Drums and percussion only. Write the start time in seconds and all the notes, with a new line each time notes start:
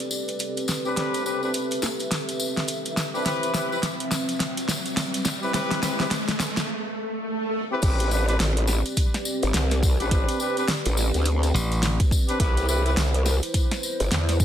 0.00 closed hi-hat
0.11 tambourine
0.28 closed hi-hat, tambourine
0.39 closed hi-hat, tambourine
0.57 closed hi-hat, tambourine
0.68 snare, tambourine
0.85 tambourine
0.96 snare, closed hi-hat, tambourine
1.14 closed hi-hat, tambourine
1.26 tambourine
1.43 tambourine
1.54 closed hi-hat, tambourine
1.71 closed hi-hat, tambourine
1.82 snare, tambourine
1.99 closed hi-hat, tambourine
2.11 snare, closed hi-hat, tambourine
2.29 closed hi-hat, tambourine
2.40 tambourine
2.57 snare, closed hi-hat, tambourine
2.68 closed hi-hat, tambourine
2.85 closed hi-hat, tambourine
2.97 snare, tambourine
3.15 tambourine
3.26 snare, closed hi-hat, tambourine
3.43 closed hi-hat, tambourine
3.54 snare, tambourine
3.72 tambourine
3.83 snare, closed hi-hat, tambourine
4.00 closed hi-hat
4.11 snare, tambourine
4.29 closed hi-hat, tambourine
4.40 snare, closed hi-hat, tambourine
4.57 closed hi-hat, tambourine
4.68 snare, tambourine
4.86 closed hi-hat, tambourine
4.97 snare, closed hi-hat, tambourine
5.14 closed hi-hat, tambourine
5.25 snare, tambourine
5.43 tambourine
5.54 snare, closed hi-hat, tambourine
5.71 snare, closed hi-hat, tambourine
5.83 snare, tambourine
6.00 snare, tambourine
6.11 snare, closed hi-hat, tambourine
6.28 snare, closed hi-hat, tambourine
6.40 snare, tambourine
6.57 snare, closed hi-hat, tambourine
7.82 kick, closed hi-hat, crash, tambourine
8.00 closed hi-hat, tambourine
8.11 tambourine
8.29 closed hi-hat, tambourine
8.40 snare, closed hi-hat, tambourine
8.57 closed hi-hat
8.67 snare, tambourine
8.86 closed hi-hat, tambourine
8.97 kick, closed hi-hat, tambourine
9.14 snare, closed hi-hat, tambourine
9.25 tambourine
9.42 closed hi-hat, tambourine
9.54 snare, closed hi-hat, tambourine
9.71 snare, closed hi-hat, tambourine
9.83 kick, tambourine
10.00 closed hi-hat, tambourine
10.11 kick, closed hi-hat, tambourine
10.29 closed hi-hat, tambourine
10.40 tambourine
10.57 closed hi-hat, tambourine
10.68 snare, closed hi-hat, tambourine
10.85 closed hi-hat, tambourine
10.97 tambourine
11.14 closed hi-hat, tambourine
11.25 closed hi-hat, tambourine
11.43 closed hi-hat, tambourine
11.55 tambourine
11.72 closed hi-hat, tambourine
11.83 snare, closed hi-hat, tambourine
12.00 kick, closed hi-hat, tambourine
12.11 kick, tambourine
12.28 closed hi-hat, tambourine
12.40 kick, closed hi-hat, tambourine
12.57 closed hi-hat, tambourine
12.69 tambourine
12.86 closed hi-hat, tambourine
12.97 snare, closed hi-hat, tambourine
13.14 closed hi-hat
13.26 snare, tambourine
13.43 closed hi-hat, tambourine
13.54 kick, closed hi-hat, tambourine
13.71 snare, closed hi-hat, tambourine
13.83 tambourine
14.00 closed hi-hat, tambourine
14.11 snare, closed hi-hat, tambourine
14.29 snare, closed hi-hat, tambourine
14.40 kick, tambourine